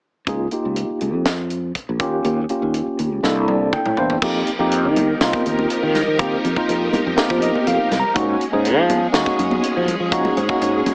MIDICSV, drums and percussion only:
0, 0, Header, 1, 2, 480
1, 0, Start_track
1, 0, Tempo, 492207
1, 269, Time_signature, 4, 2, 24, 8
1, 10674, End_track
2, 0, Start_track
2, 0, Title_t, "Drums"
2, 261, Note_on_c, 9, 42, 60
2, 263, Note_on_c, 9, 36, 80
2, 358, Note_off_c, 9, 42, 0
2, 360, Note_off_c, 9, 36, 0
2, 498, Note_on_c, 9, 42, 42
2, 595, Note_off_c, 9, 42, 0
2, 740, Note_on_c, 9, 42, 66
2, 838, Note_off_c, 9, 42, 0
2, 981, Note_on_c, 9, 42, 51
2, 1079, Note_off_c, 9, 42, 0
2, 1223, Note_on_c, 9, 42, 71
2, 1225, Note_on_c, 9, 38, 96
2, 1320, Note_off_c, 9, 42, 0
2, 1322, Note_off_c, 9, 38, 0
2, 1463, Note_on_c, 9, 42, 54
2, 1561, Note_off_c, 9, 42, 0
2, 1705, Note_on_c, 9, 42, 63
2, 1707, Note_on_c, 9, 36, 60
2, 1803, Note_off_c, 9, 42, 0
2, 1805, Note_off_c, 9, 36, 0
2, 1946, Note_on_c, 9, 42, 52
2, 1948, Note_on_c, 9, 36, 84
2, 2044, Note_off_c, 9, 42, 0
2, 2045, Note_off_c, 9, 36, 0
2, 2187, Note_on_c, 9, 42, 56
2, 2285, Note_off_c, 9, 42, 0
2, 2428, Note_on_c, 9, 42, 46
2, 2525, Note_off_c, 9, 42, 0
2, 2670, Note_on_c, 9, 42, 64
2, 2767, Note_off_c, 9, 42, 0
2, 2912, Note_on_c, 9, 42, 52
2, 3009, Note_off_c, 9, 42, 0
2, 3157, Note_on_c, 9, 38, 46
2, 3254, Note_off_c, 9, 38, 0
2, 3394, Note_on_c, 9, 48, 53
2, 3491, Note_off_c, 9, 48, 0
2, 3636, Note_on_c, 9, 36, 67
2, 3638, Note_on_c, 9, 47, 66
2, 3733, Note_off_c, 9, 36, 0
2, 3735, Note_off_c, 9, 47, 0
2, 3760, Note_on_c, 9, 45, 67
2, 3858, Note_off_c, 9, 45, 0
2, 3873, Note_on_c, 9, 43, 73
2, 3971, Note_off_c, 9, 43, 0
2, 3996, Note_on_c, 9, 43, 69
2, 4094, Note_off_c, 9, 43, 0
2, 4114, Note_on_c, 9, 49, 86
2, 4116, Note_on_c, 9, 36, 102
2, 4212, Note_off_c, 9, 49, 0
2, 4213, Note_off_c, 9, 36, 0
2, 4356, Note_on_c, 9, 42, 54
2, 4453, Note_off_c, 9, 42, 0
2, 4597, Note_on_c, 9, 42, 80
2, 4695, Note_off_c, 9, 42, 0
2, 4837, Note_on_c, 9, 42, 66
2, 4845, Note_on_c, 9, 63, 75
2, 4845, Note_on_c, 9, 64, 71
2, 4935, Note_off_c, 9, 42, 0
2, 4942, Note_off_c, 9, 63, 0
2, 4942, Note_off_c, 9, 64, 0
2, 5078, Note_on_c, 9, 42, 80
2, 5080, Note_on_c, 9, 38, 106
2, 5176, Note_off_c, 9, 42, 0
2, 5178, Note_off_c, 9, 38, 0
2, 5201, Note_on_c, 9, 36, 86
2, 5204, Note_on_c, 9, 63, 68
2, 5298, Note_off_c, 9, 36, 0
2, 5301, Note_off_c, 9, 63, 0
2, 5321, Note_on_c, 9, 42, 54
2, 5418, Note_off_c, 9, 42, 0
2, 5448, Note_on_c, 9, 63, 68
2, 5546, Note_off_c, 9, 63, 0
2, 5558, Note_on_c, 9, 42, 75
2, 5655, Note_off_c, 9, 42, 0
2, 5801, Note_on_c, 9, 42, 54
2, 5803, Note_on_c, 9, 38, 27
2, 5803, Note_on_c, 9, 64, 69
2, 5898, Note_off_c, 9, 42, 0
2, 5900, Note_off_c, 9, 38, 0
2, 5900, Note_off_c, 9, 64, 0
2, 6040, Note_on_c, 9, 36, 101
2, 6040, Note_on_c, 9, 42, 68
2, 6137, Note_off_c, 9, 36, 0
2, 6137, Note_off_c, 9, 42, 0
2, 6284, Note_on_c, 9, 42, 57
2, 6381, Note_off_c, 9, 42, 0
2, 6401, Note_on_c, 9, 36, 66
2, 6499, Note_off_c, 9, 36, 0
2, 6522, Note_on_c, 9, 42, 76
2, 6620, Note_off_c, 9, 42, 0
2, 6761, Note_on_c, 9, 63, 77
2, 6761, Note_on_c, 9, 64, 68
2, 6764, Note_on_c, 9, 42, 55
2, 6858, Note_off_c, 9, 63, 0
2, 6858, Note_off_c, 9, 64, 0
2, 6861, Note_off_c, 9, 42, 0
2, 6997, Note_on_c, 9, 42, 71
2, 6999, Note_on_c, 9, 38, 104
2, 7095, Note_off_c, 9, 42, 0
2, 7097, Note_off_c, 9, 38, 0
2, 7120, Note_on_c, 9, 36, 77
2, 7123, Note_on_c, 9, 63, 66
2, 7218, Note_off_c, 9, 36, 0
2, 7221, Note_off_c, 9, 63, 0
2, 7234, Note_on_c, 9, 42, 59
2, 7331, Note_off_c, 9, 42, 0
2, 7365, Note_on_c, 9, 63, 68
2, 7463, Note_off_c, 9, 63, 0
2, 7478, Note_on_c, 9, 42, 65
2, 7575, Note_off_c, 9, 42, 0
2, 7719, Note_on_c, 9, 42, 51
2, 7720, Note_on_c, 9, 64, 68
2, 7721, Note_on_c, 9, 38, 30
2, 7817, Note_off_c, 9, 42, 0
2, 7817, Note_off_c, 9, 64, 0
2, 7819, Note_off_c, 9, 38, 0
2, 7955, Note_on_c, 9, 36, 99
2, 7955, Note_on_c, 9, 42, 67
2, 8053, Note_off_c, 9, 36, 0
2, 8053, Note_off_c, 9, 42, 0
2, 8199, Note_on_c, 9, 42, 54
2, 8297, Note_off_c, 9, 42, 0
2, 8434, Note_on_c, 9, 42, 76
2, 8532, Note_off_c, 9, 42, 0
2, 8673, Note_on_c, 9, 42, 64
2, 8677, Note_on_c, 9, 63, 71
2, 8677, Note_on_c, 9, 64, 72
2, 8770, Note_off_c, 9, 42, 0
2, 8774, Note_off_c, 9, 63, 0
2, 8774, Note_off_c, 9, 64, 0
2, 8911, Note_on_c, 9, 42, 81
2, 8913, Note_on_c, 9, 38, 109
2, 9008, Note_off_c, 9, 42, 0
2, 9010, Note_off_c, 9, 38, 0
2, 9033, Note_on_c, 9, 36, 80
2, 9039, Note_on_c, 9, 63, 67
2, 9131, Note_off_c, 9, 36, 0
2, 9137, Note_off_c, 9, 63, 0
2, 9154, Note_on_c, 9, 42, 64
2, 9252, Note_off_c, 9, 42, 0
2, 9276, Note_on_c, 9, 63, 68
2, 9374, Note_off_c, 9, 63, 0
2, 9395, Note_on_c, 9, 42, 80
2, 9492, Note_off_c, 9, 42, 0
2, 9633, Note_on_c, 9, 42, 62
2, 9634, Note_on_c, 9, 64, 64
2, 9731, Note_off_c, 9, 42, 0
2, 9732, Note_off_c, 9, 64, 0
2, 9869, Note_on_c, 9, 36, 91
2, 9871, Note_on_c, 9, 42, 77
2, 9966, Note_off_c, 9, 36, 0
2, 9968, Note_off_c, 9, 42, 0
2, 9995, Note_on_c, 9, 64, 66
2, 10092, Note_off_c, 9, 64, 0
2, 10111, Note_on_c, 9, 42, 54
2, 10208, Note_off_c, 9, 42, 0
2, 10230, Note_on_c, 9, 36, 75
2, 10327, Note_off_c, 9, 36, 0
2, 10351, Note_on_c, 9, 42, 82
2, 10449, Note_off_c, 9, 42, 0
2, 10590, Note_on_c, 9, 42, 63
2, 10594, Note_on_c, 9, 63, 74
2, 10594, Note_on_c, 9, 64, 74
2, 10674, Note_off_c, 9, 42, 0
2, 10674, Note_off_c, 9, 63, 0
2, 10674, Note_off_c, 9, 64, 0
2, 10674, End_track
0, 0, End_of_file